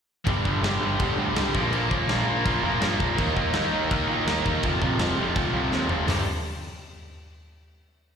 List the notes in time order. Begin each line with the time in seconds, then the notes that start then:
0.26 G1 G2 D3 G3, kick, crash
0.44 G1 G2 D3 G3, kick
0.62 G1 G2 D3 G3, snare, crash
0.80 G1 G2 D3 G3
0.99 G1 G2 D3 G3, kick, crash
1.16 D2 G2 D3 G3
1.34 C2 G2 D3 G3, snare, crash
1.54 A#1 A#2 F3 A#3, kick
1.71 A#1 A#2 F3 A#3, crash
1.90 D#2 A#2 F3 A#3, kick
2.08 A#1 A#2 F3 A#3, snare, crash
2.26 A#1 A#2 F3 A#3
2.45 A#1 A#2 F3 A#3, kick, crash
2.62 F1 A#2 F3 A#3
2.67 A#2
2.80 G2 A#2 F3 A#3, snare, crash
3.00 A#1 A#2 F3 A#3, kick
3.18 D#2 D#3 A#3 D#4, kick, crash
3.36 D#2 D#3 A#3 D#4, kick
3.53 D#2 D#3 A#3 D#4, snare, crash
3.71 D#2 D#3 A#3 D#4
3.75 D#3
3.91 D#2 D#3 A#3 D#4, kick, crash
4.08 A#2 D#3 A#3 D#4
4.26 D#2 D#3 A#3 D#4, snare, crash
4.46 D#2 D#3 A#3 D#4, kick
4.62 F1 F2 C3 F3, kick, crash
4.81 A#1 F2 C3 F3, kick
4.99 F1 F2 C3 F3, snare, crash
5.18 F1 F2 C3 F3
5.35 F1 F2 C3 F3, kick, crash
5.53 C2 F2 C3 F3
5.71 D#2 F2 C3 F3, snare
5.89 F1 F2 C3 F3, floor tom
6.06 G1 G2 D3 G3, snare, floor tom, open hi-hat